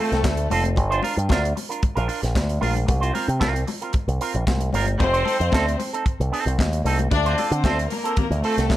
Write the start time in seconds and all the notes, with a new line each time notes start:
0.00 A3 C4 F4 A4
0.12 C2, muted clean electric guitar stroke, snare, closed hi-hat
0.24 D2, kick, snare, clap, high conga
0.37 muted clean electric guitar stroke, closed hi-hat
0.50 F1 C4 F4 A4, open hi-hat, high conga
0.64 muted clean electric guitar stroke, closed hi-hat, high conga
0.76 G1, muted clean electric guitar stroke, kick, closed hi-hat, muted conga
0.90 D4 F4 C5, closed hi-hat
1.02 D4 F4 A#4, open hi-hat, muted conga
1.17 G2, muted clean electric guitar stroke, closed hi-hat
1.29 D2 D4 F4 A#4, kick, snare, clap, high conga
1.43 muted clean electric guitar stroke, closed hi-hat
1.56 muted clean electric guitar stroke, open hi-hat, muted conga
1.69 D4 F4 A#4, closed hi-hat
1.83 muted clean electric guitar stroke, kick, closed hi-hat, muted conga
1.95 A#1 D4 F4 A#4, closed hi-hat
2.08 D4 F4 A#4, open hi-hat
2.22 A#1, muted clean electric guitar stroke, snare, closed hi-hat
2.35 D2, kick, snare, clap, high conga
2.49 muted clean electric guitar stroke, closed hi-hat
2.60 A#1 D4 F4 A#4, open hi-hat, high conga
2.75 muted clean electric guitar stroke, closed hi-hat, high conga
2.86 C2, muted clean electric guitar stroke, kick, closed hi-hat, muted conga
3.00 C4 F4 C5, closed hi-hat
3.14 C4 F4 A#4, open hi-hat, muted conga
3.28 C3, muted clean electric guitar stroke, closed hi-hat
3.39 C2 C4 F4 A#4, kick, snare, clap, high conga
3.55 muted clean electric guitar stroke, closed hi-hat
3.67 muted clean electric guitar stroke, open hi-hat, muted conga
3.81 C4 F4 A#4, closed hi-hat
3.93 muted clean electric guitar stroke, kick, closed hi-hat, muted conga
4.08 C2, muted clean electric guitar stroke, closed hi-hat
4.20 C4 F4 A#4, open hi-hat
4.34 A#1, muted clean electric guitar stroke, closed hi-hat
4.47 C2, kick, snare, clap, high conga
4.61 muted clean electric guitar stroke, closed hi-hat
4.73 G1 C4 F4 A#4, open hi-hat, high conga
4.86 muted clean electric guitar stroke, closed hi-hat, high conga
5.00 F1 C4 C5, muted clean electric guitar stroke, kick, closed hi-hat, muted conga
5.13 C4 D#4 C5, closed hi-hat
5.24 C4 D#4 A4, open hi-hat, muted conga
5.39 F2, muted clean electric guitar stroke, closed hi-hat
5.52 D2 C4 D#4 A4, kick, snare, clap, high conga
5.67 muted clean electric guitar stroke, closed hi-hat
5.78 muted clean electric guitar stroke, open hi-hat, muted conga
5.93 C4 D#4 A4, closed hi-hat
6.05 muted clean electric guitar stroke, kick, closed hi-hat
6.20 C2, muted clean electric guitar stroke, closed hi-hat
6.32 C4 D#4 A4, open hi-hat
6.46 C2, muted clean electric guitar stroke, closed hi-hat
6.59 D#2, kick, snare, clap, high conga
6.73 muted clean electric guitar stroke, closed hi-hat
6.84 C2 C4 D#4 A4, open hi-hat, high conga
6.99 muted clean electric guitar stroke, closed hi-hat, high conga
7.11 D2 D4 D5, muted clean electric guitar stroke, kick, closed hi-hat, muted conga
7.25 C4 F4 C5, closed hi-hat
7.38 C4 F4 A4, open hi-hat, muted conga
7.50 D3 C4 C5, muted clean electric guitar stroke, closed hi-hat
7.64 D2 C4 F4 A4, kick, snare, clap, high conga
7.79 muted clean electric guitar stroke, closed hi-hat
7.88 A#3 A#4, muted clean electric guitar stroke, open hi-hat, muted conga
8.04 C4 F4 A4, closed hi-hat
8.17 muted clean electric guitar stroke, kick, closed hi-hat, muted conga, low conga
8.30 D2, muted clean electric guitar stroke, closed hi-hat
8.41 A3 C4 F4 A4, open hi-hat
8.57 C2, muted clean electric guitar stroke, snare, closed hi-hat
8.69 D2, kick, snare, clap, high conga